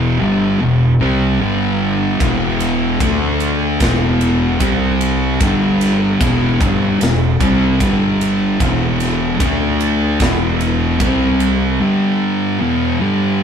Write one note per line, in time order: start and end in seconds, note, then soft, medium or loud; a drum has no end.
0.00 0.17 E1 medium
0.00 0.19 E2 medium
0.00 0.19 B2 loud
0.00 0.19 E3 loud
0.20 0.57 G1 loud
0.20 0.59 G2 medium
0.20 0.59 D3 loud
0.20 0.59 G3 medium
0.60 0.98 E1 medium
0.60 0.92 E2 medium
0.60 0.92 B2 medium
1.00 1.37 C2 loud
1.00 1.39 C3 medium
1.00 1.39 G3 medium
1.00 1.39 C4 medium
1.40 2.16 G1 medium
1.40 2.19 G2 medium
1.40 2.19 D3 medium
1.40 2.19 G3 loud
2.20 2.96 E1 medium
2.20 2.99 E2 medium
2.20 2.99 B2 loud
2.20 3.00 E3 loud
2.20 kick loud
2.20 ride medium
2.60 ride medium
3.00 3.76 D2 medium
3.00 3.79 D3 loud
3.00 3.79 A3 loud
3.00 3.80 D4 loud
3.00 kick loud
3.00 ride medium
3.40 ride medium
3.80 4.56 E1 loud
3.80 4.59 E2 medium
3.80 4.59 B2 medium
3.80 4.60 E3 loud
3.80 kick loud
3.80 snare loud
3.80 ride medium
4.21 ride medium
4.60 5.36 C2 loud
4.60 5.39 C3 medium
4.60 5.40 G3 loud
4.60 5.40 C4 loud
4.60 kick loud
4.60 ride medium
5.01 ride medium
5.40 6.17 G1 loud
5.40 6.19 G2 medium
5.40 6.19 D3 loud
5.40 6.20 G3 loud
5.40 kick loud
5.40 ride medium
5.81 snare soft
5.81 ride medium
6.21 6.58 E1 medium
6.21 6.59 E2 medium
6.21 6.59 B2 loud
6.21 6.60 E3 loud
6.21 kick loud
6.21 ride loud
6.60 6.98 G1 loud
6.60 6.99 G2 medium
6.60 7.00 D3 medium
6.60 7.00 G3 medium
6.60 kick loud
6.60 ride medium
7.01 7.38 E1 medium
7.01 7.33 E2 medium
7.01 7.33 B2 medium
7.01 snare loud
7.01 ride loud
7.40 7.78 C2 medium
7.40 7.79 C3 medium
7.40 7.80 G3 loud
7.40 7.80 C4 medium
7.40 kick loud
7.40 ride medium
7.80 8.56 G1 loud
7.80 8.59 G2 medium
7.80 8.59 D3 medium
7.80 8.60 G3 loud
7.80 kick loud
7.80 ride medium
8.21 ride medium
8.60 9.37 E1 loud
8.60 9.39 E2 loud
8.60 9.39 B2 loud
8.60 9.40 E3 loud
8.60 kick loud
8.60 ride medium
9.00 snare soft
9.00 ride medium
9.40 10.16 D2 medium
9.40 10.19 D3 medium
9.40 10.19 A3 loud
9.40 10.20 D4 loud
9.40 kick loud
9.40 ride medium
9.80 ride medium
10.20 10.96 E1 medium
10.20 10.99 E2 loud
10.20 11.00 B2 medium
10.20 11.00 E3 loud
10.20 kick loud
10.20 snare loud
10.20 ride medium
10.61 ride medium
11.00 11.76 C2 loud
11.00 11.79 C3 medium
11.00 11.79 G3 medium
11.00 11.79 C4 loud
11.00 kick loud
11.00 ride medium
11.40 ride medium
11.80 12.59 G2 medium
11.80 12.59 D3 loud
11.80 12.60 G3 loud
12.60 12.99 E2 medium
12.60 12.99 B2 loud
12.60 12.99 E3 loud
13.00 13.43 G2 medium
13.00 13.43 D3 medium
13.00 13.43 G3 loud